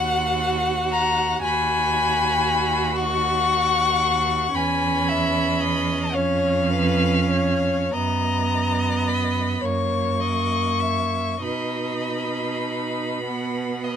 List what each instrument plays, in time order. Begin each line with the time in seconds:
Already playing: cello D#2, viola F#4, violin F#5
0.92 violin A#5
1.42 cello D#2, viola F#4, violin G#5 B5
2.95 violin F#5 C#6
4.53 cello E2, viola C#4, violin G#5 B5
5.09 violin E5
5.61 violin D#5
6.13 cello F2, viola C#4, violin C#5 F5
6.70 violin B4
7.31 violin C#5
7.93 cello F#2, viola B3, violin D#5 A#5
9.08 violin B5
9.61 cello F#2, viola A#3, violin C#5 C#6
10.20 violin D#5
10.80 violin E5
11.42 cello B2, viola D#4, violin D#5 B5
13.24 viola B3, violin F#5
13.83 violin D#5